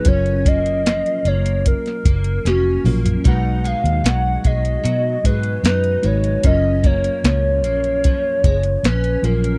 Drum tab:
HH |xxxxxxxxxxxxx-ox|x-xxx-xxx-xxxxxx|x-xxx-xxx-xxxxxx|
SD |----o----o--o---|----o-------o---|----o-------o---|
T2 |--------------o-|----------------|----------------|
FT |---------------o|----------------|----------------|
BD |o-o-----o-o-----|o-----o---o-----|o-o-----o-o-----|